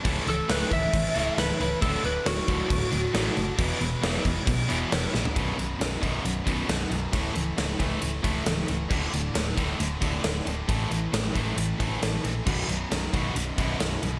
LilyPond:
<<
  \new Staff \with { instrumentName = "Lead electric guitar" } { \time 4/4 \key b \minor \tempo 4 = 135 r8 a'8 b'8 e''4. b'8 b'8 | a'8 b'8 fis'2. | r1 | r1 |
r1 | r1 | r1 | r1 | }
  \new Staff \with { instrumentName = "Distorted electric guitar" } { \clef bass \time 4/4 \key b \minor <a, e a cis' e' a'>2~ <a, e a cis' e' a'>8 <a, e a cis' e' a'>8 <a, e a cis' e' a'>4 | <d, a, d fis a d'>2~ <d, a, d fis a d'>8 <d, a, d fis a d'>8 <d, a, d fis a d'>4 | <e, b, e gis b e'>2~ <e, b, e gis b e'>8 <e, b, e gis b e'>8 <e, b, e gis b e'>4 | <b,, fis, b,>8 <b,, fis, b,>8 <b,, fis, b,>8 <b,, fis, b,>8 <b,, fis, b,>8 <b,, fis, b,>8 <b,, fis, b,>8 <b,, fis, b,>8 |
<a, e a>8 <a, e a>8 <a, e a>8 <a, e a>8 <a, e a>8 <a, e a>8 <a, e a>8 <a, e a>8 | <d, a, d>8 <d, a, d>8 <d, a, d>8 <d, a, d>8 <d, a, d>8 <d, a, d>8 <d, a, d>8 <d, a, d>8 | <a, e a>8 <a, e a>8 <a, e a>8 <a, e a>8 <a, e a>8 <a, e a>8 <a, e a>8 <a, e a>8 | <b,, fis, b,>8 <b,, fis, b,>8 <b,, fis, b,>8 <b,, fis, b,>8 <b,, fis, b,>8 <b,, fis, b,>8 <b,, fis, b,>8 <b,, fis, b,>8 | }
  \new Staff \with { instrumentName = "Distorted electric guitar" } { \clef bass \time 4/4 \key b \minor <a, e a>8 <a, e>8 <a, e a>8 <a, e>8 <a, e>8 <a, e a>8 <a, e>8 <a, e>8 | <d, a, d>8 <d, a,>8 <d, a,>8 <d, a, d>8 <d, a,>8 <d, a,>8 <d, a, d>8 <d, a,>8 | <e, b, e>8 <e, b,>8 <e, b, e>8 <e, b,>8 <e, b,>8 <e, b, e>8 <e, b,>8 <e, b,>8 | <b,, fis, b,>8 <b,, fis,>8 <b,, fis,>8 <b,, fis, b,>8 <b,, fis,>8 <b,, fis, b,>8 <b,, fis,>8 <b,, fis,>8 |
<a, e a>8 <a, e>8 <a, e>8 <a, e a>8 <a, e>8 <a, e a>8 <a, e>8 <a, e>8 | <d, a, d>8 <d, a,>8 <d, a,>8 <d, a, d>8 <d, a,>8 <d, a, d>8 <d, a,>8 <d, a,>8 | <a, e a>8 <a, e>8 <a, e>8 <a, e a>8 <a, e>8 <a, e a>8 <a, e>8 <a, e>8 | <b,, fis, b,>8 <b,, fis,>8 <b,, fis,>8 <b,, fis, b,>8 <b,, fis,>8 <b,, fis, b,>8 <b,, fis,>8 <b,, fis,>8 | }
  \new Staff \with { instrumentName = "Overdriven electric guitar" } { \clef bass \time 4/4 \key b \minor <a, e a>8 <a, e>8 <a, e a>8 <a, e>8 <a, e>8 <a, e a>8 <a, e>8 <a, e>8 | <d, a, d>8 <d, a,>8 <d, a,>8 <d, a, d>8 <d, a,>8 <d, a,>8 <d, a, d>8 <d, a,>8 | <e, b, e>8 <e, b,>8 <e, b, e>8 <e, b,>8 <e, b,>8 <e, b, e>8 <e, b,>8 <e, b,>8 | <b,, fis, b,>8 <b,, fis,>8 <b,, fis,>8 <b,, fis, b,>8 <b,, fis,>8 <b,, fis, b,>8 <b,, fis,>8 <b,, fis,>8 |
<a, e a>8 <a, e>8 <a, e>8 <a, e a>8 <a, e>8 <a, e a>8 <a, e>8 <a, e>8 | <d, a, d>8 <d, a,>8 <d, a,>8 <d, a, d>8 <d, a,>8 <d, a, d>8 <d, a,>8 <d, a,>8 | <a, e a>8 <a, e>8 <a, e>8 <a, e a>8 <a, e>8 <a, e a>8 <a, e>8 <a, e>8 | <b,, fis, b,>8 <b,, fis,>8 <b,, fis,>8 <b,, fis, b,>8 <b,, fis,>8 <b,, fis, b,>8 <b,, fis,>8 <b,, fis,>8 | }
  \new Staff \with { instrumentName = "Fingered electric bass" } { \clef bass \time 4/4 \key b \minor cis,,8 cis,,8 cis,,8 cis,,8 gis,,8 cis,,8 cis,,8 cis,,8 | d,,8 d,,8 d,,8 d,,8 d,,8 d,,8 a,,8 fis,,8 | e,,8 e,,8 e,,8 e,,8 b,,8 e,,8 e,,8 ais,,8 | b,,,8 b,,,8 b,,,8 b,,,8 b,,,8 b,,,8 b,,,8 b,,,8 |
cis,,8 cis,,8 cis,,8 cis,,8 cis,,8 cis,,8 cis,,8 cis,,8 | d,,8 d,,8 d,,8 d,,8 d,,8 d,,8 d,,8 d,,8 | a,,8 a,,8 a,,8 a,,8 a,,8 a,,8 a,,8 ais,,8 | b,,,8 b,,,8 b,,,8 b,,,8 b,,,8 b,,,8 b,,,8 c,,8 | }
  \new DrumStaff \with { instrumentName = "Drums" } \drummode { \time 4/4 <cymc bd>8 cymc8 <cymc sn>8 <cymc bd>8 <cymc bd>8 cymc8 <cymc sn>8 cymc8 | <cymc bd>8 cymc8 <cymc sn>8 <cymc bd>8 <cymc bd>8 cymc8 <cymc sn>8 cymc8 | <cymc bd>8 cymc8 <cymc sn>8 <cymc bd>8 <cymc bd>8 cymc8 <cymc sn>8 sn16 tomfh16 | <bd cymr>8 cymr8 <cymr sn>8 <bd cymr>8 cymr8 <bd cymr>8 <cymr sn>8 cymr8 |
<bd cymr>8 cymr8 <cymr sn>8 <bd cymr>8 cymr8 <bd cymr>8 <cymr sn>8 cymr8 | <cymc bd>8 cymr8 <cymr sn>8 <bd cymr>8 cymr8 <bd cymr>8 <cymr sn>8 cymr8 | <bd cymr>8 cymr8 <cymr sn>8 <bd cymr>8 cymr8 <bd cymr>8 <cymr sn>8 cymr8 | <cymc bd>8 cymr8 <cymr sn>8 <bd cymr>8 cymr8 <bd cymr>8 <cymr sn>8 cymr8 | }
>>